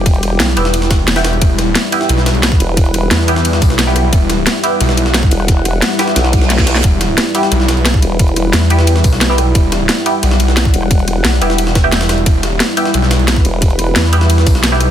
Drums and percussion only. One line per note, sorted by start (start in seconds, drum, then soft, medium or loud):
0.06 kick loud
0.06 closed hi-hat medium
0.06 ride medium
0.14 ride soft
0.23 cross-stick soft
0.23 closed hi-hat medium
0.23 ride medium
0.40 snare loud
0.40 closed hi-hat medium
0.40 ride medium
0.48 snare soft
0.57 closed hi-hat medium
0.57 ride medium
0.65 snare medium
0.74 closed hi-hat medium
0.74 ride medium
0.82 snare medium
0.91 kick loud
0.91 snare loud
0.91 closed hi-hat medium
0.91 ride medium
1.08 snare loud
1.08 closed hi-hat medium
1.08 ride medium
1.16 snare loud
1.16 ride medium
1.24 cross-stick soft
1.24 snare loud
1.24 closed hi-hat medium
1.24 ride medium
1.33 ride soft
1.41 kick loud
1.41 closed hi-hat medium
1.41 ride medium
1.58 cross-stick soft
1.58 snare soft
1.58 closed hi-hat medium
1.58 ride medium
1.75 snare loud
1.75 closed hi-hat medium
1.75 ride medium
1.92 closed hi-hat medium
1.92 ride medium
2.01 snare soft
2.09 cross-stick soft
2.09 closed hi-hat medium
2.09 ride medium
2.18 snare soft
2.26 snare loud
2.26 closed hi-hat medium
2.26 ride medium
2.35 ride soft
2.43 snare loud
2.43 closed hi-hat medium
2.43 ride medium
2.52 kick loud
2.52 ride soft
2.60 closed hi-hat medium
2.60 ride medium
2.77 kick loud
2.77 closed hi-hat medium
2.77 ride medium
2.86 ride soft
2.94 cross-stick soft
2.94 closed hi-hat medium
2.94 ride medium
3.11 snare loud
3.11 closed hi-hat medium
3.11 ride medium
3.19 snare soft
3.28 closed hi-hat medium
3.28 ride medium
3.36 snare medium
3.45 closed hi-hat medium
3.45 ride medium
3.53 snare medium
3.62 kick loud
3.62 closed hi-hat medium
3.62 open hi-hat medium
3.70 snare medium
3.79 snare loud
3.79 closed hi-hat medium
3.79 ride medium
3.96 cross-stick soft
3.96 closed hi-hat medium
3.96 ride medium
4.13 kick loud
4.13 closed hi-hat loud
4.13 ride medium
4.30 cross-stick soft
4.30 snare soft
4.30 closed hi-hat medium
4.30 ride medium
4.47 snare loud
4.47 closed hi-hat loud
4.47 ride medium
4.63 closed hi-hat medium
4.63 ride medium
4.80 cross-stick soft
4.80 closed hi-hat loud
4.80 ride medium
4.89 snare medium
4.97 closed hi-hat medium
4.97 ride medium
5.06 snare soft
5.14 snare loud
5.14 closed hi-hat loud
5.14 ride medium
5.23 kick loud
5.23 ride soft
5.31 closed hi-hat medium
5.31 ride medium
5.40 cross-stick soft
5.48 kick loud
5.48 snare soft
5.48 closed hi-hat loud
5.48 ride medium
5.65 cross-stick soft
5.65 closed hi-hat medium
5.65 ride medium
5.82 snare loud
5.82 closed hi-hat loud
5.82 ride medium
5.91 snare soft
5.99 snare loud
5.99 closed hi-hat medium
5.99 ride medium
6.08 snare medium
6.16 snare loud
6.16 closed hi-hat loud
6.16 ride medium
6.25 snare medium
6.33 kick loud
6.33 closed hi-hat medium
6.33 ride medium
6.41 snare soft
6.50 snare medium
6.50 closed hi-hat loud
6.50 ride medium
6.58 kick medium
6.58 snare soft
6.58 snare medium
6.67 snare loud
6.67 closed hi-hat medium
6.67 ride medium
6.75 snare medium
6.75 ride soft
6.84 kick loud
6.84 closed hi-hat loud
6.84 ride medium
7.01 cross-stick soft
7.01 snare soft
7.01 closed hi-hat medium
7.01 ride medium
7.18 snare loud
7.18 closed hi-hat loud
7.18 ride medium
7.35 closed hi-hat medium
7.35 ride medium
7.43 snare soft
7.52 cross-stick soft
7.52 closed hi-hat loud
7.52 ride medium
7.60 snare soft
7.68 snare loud
7.68 closed hi-hat medium
7.68 ride medium
7.77 ride soft
7.85 snare loud
7.85 closed hi-hat loud
7.85 ride medium
7.94 kick loud
7.94 ride soft
8.02 closed hi-hat medium
8.02 ride medium
8.19 kick loud
8.19 closed hi-hat loud
8.19 ride medium
8.28 ride soft
8.36 cross-stick soft
8.36 closed hi-hat medium
8.36 ride medium
8.53 snare loud
8.53 closed hi-hat loud
8.53 ride medium
8.62 snare soft
8.70 closed hi-hat medium
8.70 ride medium
8.79 snare medium
8.87 closed hi-hat medium
8.87 ride medium
8.96 snare medium
9.04 kick loud
9.04 closed hi-hat medium
9.04 open hi-hat medium
9.13 snare medium
9.21 snare loud
9.21 closed hi-hat loud
9.21 ride medium
9.38 cross-stick medium
9.38 closed hi-hat medium
9.38 ride medium
9.55 kick loud
9.55 closed hi-hat medium
9.55 ride medium
9.72 cross-stick soft
9.72 snare soft
9.72 closed hi-hat medium
9.72 ride medium
9.89 snare loud
9.89 closed hi-hat medium
9.89 ride medium
10.06 closed hi-hat medium
10.06 ride medium
10.23 cross-stick soft
10.23 closed hi-hat medium
10.23 ride medium
10.31 snare medium
10.40 closed hi-hat medium
10.40 ride medium
10.48 snare soft
10.57 snare loud
10.57 closed hi-hat loud
10.57 ride medium
10.65 kick loud
10.65 ride soft
10.74 closed hi-hat medium
10.74 ride medium
10.82 cross-stick soft
10.91 kick loud
10.91 closed hi-hat medium
10.91 ride medium
10.99 ride soft
11.08 cross-stick soft
11.08 closed hi-hat medium
11.08 ride medium
11.25 snare loud
11.25 closed hi-hat medium
11.25 ride medium
11.33 snare soft
11.41 closed hi-hat medium
11.41 ride medium
11.50 snare medium
11.58 closed hi-hat medium
11.58 ride loud
11.67 snare medium
11.75 kick loud
11.75 snare loud
11.75 closed hi-hat medium
11.75 ride medium
11.92 snare loud
11.92 closed hi-hat medium
11.92 ride medium
12.01 snare loud
12.01 ride medium
12.09 cross-stick soft
12.09 snare loud
12.09 closed hi-hat medium
12.09 ride medium
12.18 ride soft
12.26 kick loud
12.26 closed hi-hat medium
12.26 ride medium
12.43 cross-stick soft
12.43 snare soft
12.43 closed hi-hat medium
12.43 ride medium
12.60 snare loud
12.60 closed hi-hat medium
12.60 ride medium
12.77 closed hi-hat medium
12.77 ride medium
12.85 snare soft
12.94 cross-stick soft
12.94 closed hi-hat medium
12.94 ride medium
13.02 snare soft
13.11 snare loud
13.11 closed hi-hat medium
13.11 ride medium
13.19 ride soft
13.28 snare loud
13.28 closed hi-hat medium
13.28 ride medium
13.36 kick loud
13.36 ride soft
13.45 closed hi-hat medium
13.45 ride medium
13.62 kick loud
13.62 closed hi-hat medium
13.62 ride medium
13.70 ride soft
13.79 cross-stick soft
13.79 closed hi-hat medium
13.79 ride medium
13.96 snare loud
13.96 closed hi-hat medium
13.96 ride medium
14.04 snare soft
14.13 closed hi-hat medium
14.13 ride medium
14.21 snare medium
14.30 closed hi-hat medium
14.30 ride medium
14.38 snare medium
14.47 kick loud
14.47 closed hi-hat medium
14.47 open hi-hat medium
14.55 snare medium
14.63 snare loud
14.63 closed hi-hat loud
14.63 ride medium
14.80 cross-stick soft
14.80 closed hi-hat medium
14.80 ride medium